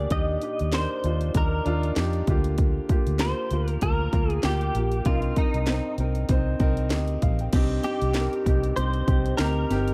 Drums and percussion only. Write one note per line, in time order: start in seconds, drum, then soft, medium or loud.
0.10 kick medium
0.10 closed hi-hat medium
0.42 closed hi-hat medium
0.59 closed hi-hat soft
0.72 snare medium
0.72 clap medium
0.72 closed hi-hat medium
1.04 closed hi-hat medium
1.21 closed hi-hat soft
1.34 kick medium
1.34 closed hi-hat medium
1.66 closed hi-hat soft
1.83 closed hi-hat soft
1.96 snare medium
1.96 clap medium
1.96 closed hi-hat medium
2.13 closed hi-hat soft
2.27 kick medium
2.27 closed hi-hat medium
2.44 closed hi-hat soft
2.58 kick medium
2.58 closed hi-hat medium
2.89 kick medium
2.89 closed hi-hat medium
3.07 closed hi-hat soft
3.19 snare medium
3.19 clap medium
3.19 closed hi-hat medium
3.51 closed hi-hat medium
3.68 closed hi-hat soft
3.81 kick medium
3.81 closed hi-hat medium
4.13 kick medium
4.13 closed hi-hat soft
4.30 closed hi-hat soft
4.43 snare loud
4.43 clap medium
4.43 closed hi-hat medium
4.61 closed hi-hat soft
4.75 closed hi-hat medium
4.92 closed hi-hat soft
5.05 kick medium
5.05 closed hi-hat medium
5.22 closed hi-hat soft
5.36 kick medium
5.36 closed hi-hat medium
5.54 closed hi-hat soft
5.66 snare medium
5.66 clap medium
5.66 closed hi-hat medium
5.98 closed hi-hat medium
6.15 closed hi-hat soft
6.29 kick medium
6.29 closed hi-hat medium
6.60 kick medium
6.60 closed hi-hat soft
6.77 closed hi-hat soft
6.90 snare loud
6.90 clap medium
6.90 closed hi-hat medium
7.08 closed hi-hat soft
7.22 kick medium
7.22 closed hi-hat medium
7.39 closed hi-hat soft
7.53 kick medium
7.53 closed hi-hat medium
7.53 crash medium
7.84 closed hi-hat medium
8.02 closed hi-hat medium
8.14 snare medium
8.14 clap medium
8.14 closed hi-hat medium
8.33 closed hi-hat soft
8.46 kick medium
8.46 closed hi-hat medium
8.64 closed hi-hat soft
8.77 closed hi-hat medium
8.94 closed hi-hat soft
9.08 kick medium
9.08 closed hi-hat medium
9.26 closed hi-hat soft
9.38 snare loud
9.38 clap medium
9.38 closed hi-hat medium
9.70 snare soft
9.70 closed hi-hat medium
9.88 closed hi-hat soft